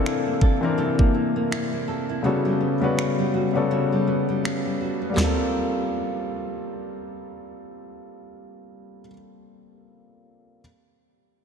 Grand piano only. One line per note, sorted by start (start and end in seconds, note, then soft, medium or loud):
0.00 0.61 E3 medium
0.00 0.62 A#3 medium
0.00 0.63 C4 medium
0.00 0.63 D4 medium
0.00 2.26 A4 medium
0.61 1.87 E3 medium
0.61 1.87 A#3 medium
0.61 1.88 C4 medium
0.61 1.88 D4 medium
0.61 1.89 A#4 medium
2.23 2.73 C#3 medium
2.23 2.74 G3 medium
2.23 2.74 B3 medium
2.23 2.74 C#4 medium
2.23 2.75 F#4 medium
2.23 2.75 A4 medium
2.80 3.44 C#3 medium
2.80 3.44 G3 medium
2.80 3.45 B3 medium
2.80 3.45 C#4 medium
2.80 3.45 F#4 medium
2.80 3.46 B4 medium
3.54 4.80 C#3 medium
3.54 4.80 G3 medium
3.54 4.80 B3 medium
3.54 4.81 C#4 medium
3.54 4.81 F#4 medium
3.54 4.81 A4 medium
5.10 8.98 G3 medium
5.10 9.01 A#3 medium
5.17 9.05 C4 medium
5.17 9.09 F4 medium
5.24 9.12 A4 medium